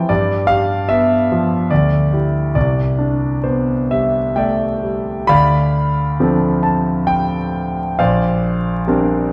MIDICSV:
0, 0, Header, 1, 2, 480
1, 0, Start_track
1, 0, Tempo, 787402
1, 55, Time_signature, 3, 2, 24, 8
1, 537, Tempo, 834492
1, 1497, Tempo, 910470
1, 3417, Tempo, 887574
1, 5111, End_track
2, 0, Start_track
2, 0, Title_t, "Grand piano"
2, 0, Program_c, 0, 0
2, 0, Control_c, 0, 64, 127
2, 0, Note_on_c, 0, 52, 39
2, 0, Note_on_c, 0, 53, 34
2, 0, Note_on_c, 0, 60, 45
2, 0, Note_on_c, 0, 67, 41
2, 0, Note_on_c, 0, 79, 79
2, 0, Note_on_c, 0, 81, 70
2, 54, Note_on_c, 0, 74, 68
2, 57, Note_on_c, 0, 43, 47
2, 64, Control_c, 0, 64, 0
2, 66, Note_off_c, 0, 53, 0
2, 66, Note_off_c, 0, 81, 0
2, 67, Note_off_c, 0, 67, 0
2, 69, Note_off_c, 0, 79, 0
2, 71, Note_off_c, 0, 52, 0
2, 71, Note_off_c, 0, 60, 0
2, 176, Control_c, 0, 64, 127
2, 287, Note_on_c, 0, 77, 80
2, 290, Note_off_c, 0, 74, 0
2, 296, Note_on_c, 0, 67, 42
2, 534, Note_off_c, 0, 77, 0
2, 540, Note_on_c, 0, 76, 76
2, 548, Note_on_c, 0, 59, 39
2, 680, Note_off_c, 0, 67, 0
2, 789, Note_on_c, 0, 53, 40
2, 919, Note_off_c, 0, 59, 0
2, 986, Note_off_c, 0, 43, 0
2, 1010, Note_off_c, 0, 76, 0
2, 1011, Note_on_c, 0, 74, 67
2, 1016, Note_on_c, 0, 38, 42
2, 1017, Note_off_c, 0, 53, 0
2, 1020, Control_c, 0, 64, 0
2, 1103, Control_c, 0, 64, 127
2, 1254, Note_on_c, 0, 64, 28
2, 1256, Note_on_c, 0, 67, 32
2, 1476, Note_off_c, 0, 64, 0
2, 1477, Note_off_c, 0, 67, 0
2, 1486, Note_off_c, 0, 38, 0
2, 1489, Note_off_c, 0, 74, 0
2, 1497, Note_on_c, 0, 74, 58
2, 1501, Note_on_c, 0, 36, 42
2, 1508, Control_c, 0, 64, 0
2, 1614, Control_c, 0, 64, 127
2, 1726, Note_on_c, 0, 62, 34
2, 1964, Note_on_c, 0, 72, 44
2, 1966, Note_off_c, 0, 74, 0
2, 1966, Note_on_c, 0, 59, 32
2, 2113, Note_off_c, 0, 62, 0
2, 2211, Note_off_c, 0, 72, 0
2, 2214, Note_on_c, 0, 76, 59
2, 2220, Note_on_c, 0, 55, 30
2, 2358, Note_off_c, 0, 59, 0
2, 2451, Note_off_c, 0, 76, 0
2, 2451, Note_on_c, 0, 79, 60
2, 2455, Note_on_c, 0, 57, 27
2, 2459, Note_on_c, 0, 74, 43
2, 2459, Note_on_c, 0, 76, 45
2, 2602, Note_off_c, 0, 55, 0
2, 2696, Note_off_c, 0, 57, 0
2, 2698, Note_on_c, 0, 55, 29
2, 2920, Note_off_c, 0, 36, 0
2, 2921, Note_off_c, 0, 74, 0
2, 2921, Note_off_c, 0, 76, 0
2, 2933, Note_on_c, 0, 83, 90
2, 2938, Note_off_c, 0, 79, 0
2, 2941, Note_off_c, 0, 55, 0
2, 2941, Note_on_c, 0, 38, 47
2, 2941, Note_on_c, 0, 74, 56
2, 2942, Note_on_c, 0, 77, 62
2, 2952, Control_c, 0, 64, 0
2, 3065, Control_c, 0, 64, 127
2, 3404, Note_off_c, 0, 38, 0
2, 3422, Note_on_c, 0, 53, 36
2, 3422, Note_on_c, 0, 60, 38
2, 3423, Note_on_c, 0, 62, 36
2, 3427, Note_on_c, 0, 69, 35
2, 3636, Note_off_c, 0, 74, 0
2, 3636, Note_off_c, 0, 77, 0
2, 3653, Note_off_c, 0, 83, 0
2, 3653, Note_on_c, 0, 81, 58
2, 3891, Note_on_c, 0, 79, 73
2, 3897, Note_off_c, 0, 81, 0
2, 4369, Note_off_c, 0, 53, 0
2, 4369, Note_off_c, 0, 60, 0
2, 4370, Note_off_c, 0, 62, 0
2, 4372, Note_off_c, 0, 69, 0
2, 4385, Note_off_c, 0, 79, 0
2, 4388, Note_on_c, 0, 77, 66
2, 4392, Note_on_c, 0, 34, 53
2, 4393, Note_on_c, 0, 72, 50
2, 4393, Note_on_c, 0, 74, 54
2, 4398, Control_c, 0, 64, 0
2, 4499, Control_c, 0, 64, 127
2, 4846, Note_off_c, 0, 72, 0
2, 4846, Note_off_c, 0, 74, 0
2, 4853, Note_off_c, 0, 34, 0
2, 4865, Note_off_c, 0, 77, 0
2, 4865, Note_on_c, 0, 55, 36
2, 4869, Note_on_c, 0, 60, 41
2, 4871, Note_on_c, 0, 70, 39
2, 4872, Note_on_c, 0, 62, 41
2, 5111, Note_off_c, 0, 55, 0
2, 5111, Note_off_c, 0, 60, 0
2, 5111, Note_off_c, 0, 62, 0
2, 5111, Note_off_c, 0, 70, 0
2, 5111, End_track
0, 0, End_of_file